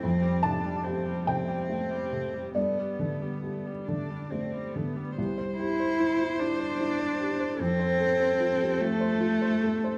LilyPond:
<<
  \new Staff \with { instrumentName = "Felt piano" } { \time 6/8 \key c \major \tempo 4. = 48 << { r8 a''4 g''4. | d''4. r4. | r2. | r2. | } \\ { f,8 c8 g'8 c8 a8 c8 | g,8 d8 g'8 d8 a8 d8 | c,16 c''16 g'16 c''16 e'16 f'16 e'16 c''16 e'16 c''16 g'16 c''16 | f,16 c''16 a'16 c''16 f'16 g'16 f'16 c''16 f'16 c''16 a'16 c''16 | } >> }
  \new Staff \with { instrumentName = "Cello" } { \time 6/8 \key c \major c'8 d'8 c'8 c'4. | b4. d'8 c'8 b8 | r8 e'4 d'4. | c'4. a4. | }
  \new Staff \with { instrumentName = "Viola" } { \time 6/8 \key c \major a16 g16 a16 g16 a16 g16 a16 g16 a16 g16 a16 g16 | a16 g16 a16 g16 a16 g16 a16 g16 a16 g16 a16 g16 | c''2. | a'2. | }
>>